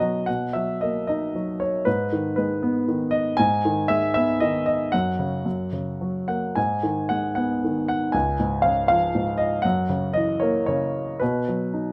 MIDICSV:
0, 0, Header, 1, 2, 480
1, 0, Start_track
1, 0, Key_signature, 5, "major"
1, 0, Tempo, 538117
1, 246, Time_signature, 3, 2, 24, 8
1, 1203, Tempo, 511509
1, 4563, Tempo, 541028
1, 6963, Tempo, 503356
1, 9363, Tempo, 530504
1, 10966, End_track
2, 0, Start_track
2, 0, Title_t, "Grand piano"
2, 0, Program_c, 0, 0
2, 0, Control_c, 0, 64, 127
2, 0, Note_on_c, 0, 47, 34
2, 0, Note_on_c, 0, 54, 39
2, 0, Note_on_c, 0, 63, 39
2, 0, Note_on_c, 0, 71, 62
2, 0, Note_on_c, 0, 75, 54
2, 0, Note_on_c, 0, 78, 47
2, 0, Note_on_c, 0, 82, 48
2, 10, Note_off_c, 0, 54, 0
2, 10, Note_on_c, 0, 54, 35
2, 235, Note_off_c, 0, 47, 0
2, 235, Note_off_c, 0, 78, 0
2, 235, Note_on_c, 0, 78, 54
2, 243, Note_off_c, 0, 54, 0
2, 248, Note_off_c, 0, 75, 0
2, 252, Note_on_c, 0, 47, 33
2, 259, Control_c, 0, 64, 0
2, 260, Note_off_c, 0, 63, 0
2, 260, Note_off_c, 0, 71, 0
2, 260, Note_off_c, 0, 82, 0
2, 399, Control_c, 0, 64, 127
2, 476, Note_on_c, 0, 76, 52
2, 488, Note_off_c, 0, 78, 0
2, 490, Note_on_c, 0, 54, 31
2, 722, Note_on_c, 0, 75, 53
2, 730, Note_off_c, 0, 76, 0
2, 732, Note_on_c, 0, 58, 31
2, 944, Note_off_c, 0, 75, 0
2, 958, Note_on_c, 0, 75, 54
2, 973, Note_on_c, 0, 63, 34
2, 1190, Note_off_c, 0, 54, 0
2, 1204, Note_on_c, 0, 54, 32
2, 1437, Note_on_c, 0, 73, 53
2, 1455, Note_off_c, 0, 75, 0
2, 1652, Note_off_c, 0, 47, 0
2, 1659, Note_off_c, 0, 58, 0
2, 1665, Note_off_c, 0, 73, 0
2, 1667, Note_off_c, 0, 63, 0
2, 1672, Note_off_c, 0, 54, 0
2, 1675, Note_on_c, 0, 71, 59
2, 1688, Note_on_c, 0, 44, 43
2, 1699, Control_c, 0, 64, 0
2, 1878, Control_c, 0, 64, 127
2, 1931, Note_on_c, 0, 51, 37
2, 2138, Note_off_c, 0, 71, 0
2, 2152, Note_on_c, 0, 71, 48
2, 2168, Note_on_c, 0, 56, 37
2, 2402, Note_on_c, 0, 59, 41
2, 2597, Note_off_c, 0, 71, 0
2, 2629, Note_off_c, 0, 51, 0
2, 2643, Note_on_c, 0, 51, 36
2, 2854, Note_on_c, 0, 75, 64
2, 3074, Note_off_c, 0, 44, 0
2, 3084, Note_off_c, 0, 75, 0
2, 3086, Note_off_c, 0, 56, 0
2, 3092, Note_off_c, 0, 59, 0
2, 3098, Note_on_c, 0, 80, 74
2, 3100, Note_off_c, 0, 51, 0
2, 3122, Note_on_c, 0, 44, 54
2, 3123, Control_c, 0, 64, 0
2, 3300, Control_c, 0, 64, 127
2, 3364, Note_on_c, 0, 51, 42
2, 3581, Note_on_c, 0, 76, 69
2, 3593, Note_on_c, 0, 56, 41
2, 3601, Note_off_c, 0, 80, 0
2, 3810, Note_off_c, 0, 76, 0
2, 3824, Note_on_c, 0, 76, 68
2, 3840, Note_on_c, 0, 59, 41
2, 4055, Note_off_c, 0, 76, 0
2, 4068, Note_off_c, 0, 51, 0
2, 4069, Note_on_c, 0, 75, 67
2, 4082, Note_on_c, 0, 51, 36
2, 4296, Note_off_c, 0, 75, 0
2, 4310, Note_on_c, 0, 75, 64
2, 4532, Note_off_c, 0, 44, 0
2, 4535, Note_off_c, 0, 56, 0
2, 4541, Note_off_c, 0, 75, 0
2, 4544, Note_off_c, 0, 59, 0
2, 4551, Note_off_c, 0, 51, 0
2, 4554, Note_on_c, 0, 78, 66
2, 4569, Note_on_c, 0, 42, 44
2, 4577, Control_c, 0, 64, 0
2, 4709, Control_c, 0, 64, 127
2, 4796, Note_on_c, 0, 49, 36
2, 5016, Note_off_c, 0, 42, 0
2, 5025, Note_off_c, 0, 49, 0
2, 5029, Note_on_c, 0, 42, 38
2, 5044, Control_c, 0, 64, 0
2, 5223, Control_c, 0, 64, 127
2, 5271, Note_on_c, 0, 49, 30
2, 5521, Note_on_c, 0, 54, 30
2, 5747, Note_off_c, 0, 78, 0
2, 5760, Note_on_c, 0, 78, 47
2, 5763, Note_on_c, 0, 58, 29
2, 5988, Note_off_c, 0, 42, 0
2, 5996, Note_off_c, 0, 49, 0
2, 6004, Note_off_c, 0, 54, 0
2, 6005, Note_on_c, 0, 80, 55
2, 6007, Note_off_c, 0, 58, 0
2, 6014, Note_on_c, 0, 44, 39
2, 6021, Note_off_c, 0, 78, 0
2, 6029, Control_c, 0, 64, 0
2, 6192, Control_c, 0, 64, 127
2, 6252, Note_on_c, 0, 51, 34
2, 6457, Note_off_c, 0, 80, 0
2, 6480, Note_on_c, 0, 78, 59
2, 6495, Note_on_c, 0, 56, 34
2, 6699, Note_off_c, 0, 78, 0
2, 6712, Note_on_c, 0, 78, 57
2, 6726, Note_on_c, 0, 59, 33
2, 6958, Note_off_c, 0, 51, 0
2, 6972, Note_on_c, 0, 51, 30
2, 7187, Note_off_c, 0, 78, 0
2, 7202, Note_on_c, 0, 78, 60
2, 7410, Note_off_c, 0, 44, 0
2, 7420, Note_off_c, 0, 56, 0
2, 7426, Note_off_c, 0, 59, 0
2, 7428, Note_on_c, 0, 80, 60
2, 7440, Note_off_c, 0, 51, 0
2, 7446, Note_on_c, 0, 37, 46
2, 7453, Note_off_c, 0, 78, 0
2, 7462, Control_c, 0, 64, 0
2, 7643, Control_c, 0, 64, 127
2, 7689, Note_on_c, 0, 44, 37
2, 7903, Note_on_c, 0, 77, 65
2, 7927, Note_off_c, 0, 80, 0
2, 7930, Note_on_c, 0, 49, 38
2, 8139, Note_off_c, 0, 77, 0
2, 8153, Note_on_c, 0, 77, 74
2, 8170, Note_on_c, 0, 53, 39
2, 8392, Note_off_c, 0, 44, 0
2, 8407, Note_on_c, 0, 44, 38
2, 8623, Note_on_c, 0, 75, 58
2, 8651, Note_off_c, 0, 77, 0
2, 8839, Note_off_c, 0, 37, 0
2, 8854, Note_off_c, 0, 49, 0
2, 8857, Note_on_c, 0, 78, 64
2, 8862, Note_off_c, 0, 53, 0
2, 8868, Note_off_c, 0, 44, 0
2, 8878, Note_off_c, 0, 75, 0
2, 8886, Note_on_c, 0, 42, 52
2, 8892, Control_c, 0, 64, 0
2, 9057, Control_c, 0, 64, 127
2, 9117, Note_on_c, 0, 49, 41
2, 9348, Note_on_c, 0, 75, 64
2, 9367, Note_on_c, 0, 52, 39
2, 9368, Note_off_c, 0, 78, 0
2, 9586, Note_on_c, 0, 73, 56
2, 9600, Note_off_c, 0, 75, 0
2, 9602, Note_on_c, 0, 58, 44
2, 9813, Note_off_c, 0, 73, 0
2, 9827, Note_on_c, 0, 73, 62
2, 9830, Note_off_c, 0, 49, 0
2, 9844, Note_on_c, 0, 49, 38
2, 10290, Note_off_c, 0, 42, 0
2, 10297, Note_off_c, 0, 52, 0
2, 10303, Note_off_c, 0, 58, 0
2, 10308, Note_on_c, 0, 71, 55
2, 10309, Note_off_c, 0, 49, 0
2, 10326, Note_on_c, 0, 47, 48
2, 10330, Note_off_c, 0, 73, 0
2, 10335, Control_c, 0, 64, 0
2, 10494, Control_c, 0, 64, 127
2, 10567, Note_on_c, 0, 54, 39
2, 10795, Note_on_c, 0, 63, 34
2, 10966, Note_off_c, 0, 47, 0
2, 10966, Note_off_c, 0, 54, 0
2, 10966, Note_off_c, 0, 63, 0
2, 10966, Note_off_c, 0, 71, 0
2, 10966, End_track
0, 0, End_of_file